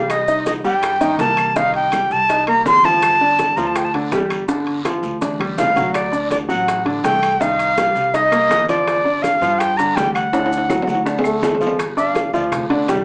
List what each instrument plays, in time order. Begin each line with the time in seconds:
Already playing: upright bass C2, grand piano G3 G4, flute F5
0.10 flute D#5, high bongo, high conga, high timbale, long guiro, claves, maracas
0.28 grand piano D#4 D#5, high conga, maracas
0.46 flute D#5, high bongo, high conga, high timbale, short guiro, maracas
0.64 upright bass G2, grand piano G3 G4, flute G5, high conga, short guiro, maracas
0.82 high bongo, high conga, high timbale, long guiro, claves, maracas
1.01 grand piano D#3 D#4, high conga, high timbale, maracas
1.19 upright bass C2, grand piano A#3 A#4, flute A5, high bongo, low bongo, high conga, high timbale, short guiro, maracas
1.37 high conga, high timbale, short guiro, claves, maracas
1.56 grand piano D#3 D#4, flute F5, high bongo, high conga, long guiro, maracas
1.74 flute G5, high conga, high timbale
1.92 grand piano G3 G4, high bongo, high conga, high timbale, short guiro, claves, maracas
2.11 upright bass C2, flute A5, high bongo, high conga, short guiro, maracas
2.29 grand piano D#4 D#5, high bongo, high conga, high timbale, long guiro, maracas
2.47 grand piano A#3 A#4, flute A#5, high bongo, high conga, high timbale, claves
2.65 upright bass G1, flute C6, high bongo, low bongo, high conga, low timbale, short guiro, maracas
2.84 grand piano F3 F4, flute A5, high bongo, high conga, high timbale, short guiro, maracas
3.02 high bongo, high conga, high timbale, long guiro, claves, maracas
3.21 grand piano D4 D5, high conga
3.39 high bongo, high conga, high timbale, short guiro, maracas
3.56 upright bass D2, grand piano F3 F4, flute A#5, high conga, short guiro, maracas
3.66 flute A5
3.75 flute G5, high bongo, high conga, high timbale, long guiro, claves, maracas
3.85 flute A5
3.94 grand piano D3 D4, high conga, high timbale
4.11 upright bass G1, grand piano G3 G4, high bongo, low bongo, high conga, high timbale, low timbale, short guiro, maracas
4.30 high timbale, short guiro, claves, maracas
4.48 grand piano D3 D4, high bongo, high conga, long guiro, maracas
4.67 high conga, high timbale
4.85 grand piano F3 F4, high bongo, high conga, high timbale, short guiro, claves, maracas
5.03 upright bass D2, high bongo, high conga, short guiro, maracas
5.21 grand piano D4 D5, high bongo, high conga, high timbale, long guiro, maracas
5.40 grand piano G3 G4, high bongo, high conga, high timbale, claves
5.58 upright bass D2, flute F5, high bongo, low bongo, low conga, low timbale, short guiro, maracas
5.75 grand piano F#3 F#4, high bongo, low conga, high timbale, short guiro, maracas
5.94 flute D5, high bongo, high conga, high timbale, long guiro, claves, maracas
6.12 grand piano D4 D5, high conga, maracas
6.30 flute D5, high bongo, high conga, high timbale, short guiro, maracas
6.49 upright bass A1, grand piano F#3 F#4, flute F#5, high conga, short guiro, maracas
6.67 high bongo, high conga, high timbale, long guiro, claves, maracas
6.85 grand piano D3 D4, high conga, high timbale
7.04 upright bass C2, grand piano A3 A4, flute G5, high bongo, low bongo, high conga, high timbale, low timbale, short guiro, maracas
7.22 high timbale, short guiro, claves, maracas
7.40 grand piano D#3 D#4, flute F5, high bongo, high conga, long guiro, maracas
7.59 high conga, high timbale, maracas
7.77 grand piano G3 G4, high bongo, high conga, high timbale, short guiro, claves, maracas
7.95 upright bass C2, high bongo, high conga, short guiro, maracas
8.14 grand piano D#4 D#5, flute D#5, high bongo, high conga, high timbale, long guiro, maracas
8.32 grand piano A#3 A#4, high bongo, high conga, high timbale, claves, maracas
8.50 upright bass G1, high bongo, low bongo, high conga, low timbale, short guiro, maracas
8.69 grand piano F3 F4, flute D5, high bongo, high conga, high timbale, short guiro, maracas
8.87 high bongo, high conga, high timbale, long guiro, claves, maracas
9.05 grand piano D4 D5, high conga
9.22 flute F5, high bongo, high conga, high timbale, short guiro, maracas
9.41 upright bass G2, grand piano F3 F4, high conga, short guiro, maracas
9.59 flute G5, high bongo, high conga, high timbale, long guiro, claves, maracas
9.77 grand piano D3 D4, flute A#5, high conga, high timbale, maracas
9.96 upright bass D2, grand piano G3 G4, flute G5, high bongo, low bongo, high conga, high timbale, low timbale, short guiro, maracas
10.14 flute F#5, high timbale, short guiro, claves, maracas
10.33 grand piano D3 D4, high bongo, high conga, high timbale, long guiro, maracas
10.46 high timbale
10.51 high conga, maracas
10.57 high timbale
10.69 grand piano F#3 F#4, high bongo, high conga, high timbale, short guiro, claves, maracas
10.82 low timbale
10.87 upright bass D2, high bongo, high conga, short guiro, maracas
10.94 high timbale
11.05 grand piano D4 D5, high bongo, high conga, long guiro, maracas
11.19 low timbale
11.24 grand piano A3 A4, high bongo, high conga, claves, maracas
11.42 upright bass G1, high bongo, low bongo, high conga, low timbale, short guiro, maracas
11.55 low timbale
11.61 grand piano F3 F4, high bongo, high conga, short guiro, maracas
11.67 low timbale
11.79 high bongo, high conga, high timbale, long guiro, claves, maracas
11.97 grand piano D4 D5 D6, flute F5, high conga, maracas
12.15 high bongo, high conga, high timbale, short guiro, maracas
12.33 upright bass D2, grand piano F3 F4 F5, flute D5, high conga, short guiro, maracas
12.52 high bongo, high conga, low conga, high timbale, long guiro, claves, maracas
12.70 grand piano D3 D4 D5, high conga, high timbale
12.88 upright bass C2, grand piano G3 G4 G5, high bongo, low bongo, high conga, high timbale, low timbale, short guiro, maracas